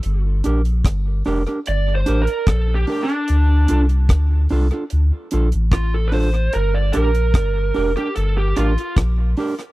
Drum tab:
HH |x-xxx-oxx-xxx-ox|x-xxx-oxx-xxx-ox|x-xxx-oxx-xxx-ox|
SD |----r-r-----r---|----r-------r---|----r-------r--r|
BD |----o-------o---|----o-------o---|----o-------o---|